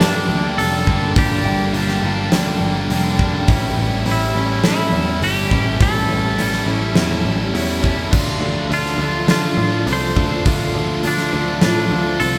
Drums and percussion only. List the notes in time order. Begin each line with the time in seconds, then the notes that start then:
0.01 snare, open hi-hat
0.59 open hi-hat
0.87 kick
1.16 kick, open hi-hat
1.74 open hi-hat
1.89 snare
2.32 snare, open hi-hat
2.90 open hi-hat
3.19 kick
3.48 kick, open hi-hat
4.06 open hi-hat
4.64 snare, open hi-hat
5.22 open hi-hat
5.51 kick
5.81 kick, open hi-hat
6.39 open hi-hat
6.53 snare
6.95 snare, open hi-hat
7.55 open hi-hat
7.84 kick
8.13 kick, crash
8.72 open hi-hat
8.86 snare
9.28 snare, open hi-hat
9.87 open hi-hat
10.17 kick
10.45 kick, open hi-hat
11.03 open hi-hat
11.18 snare
11.61 snare, open hi-hat
12.20 open hi-hat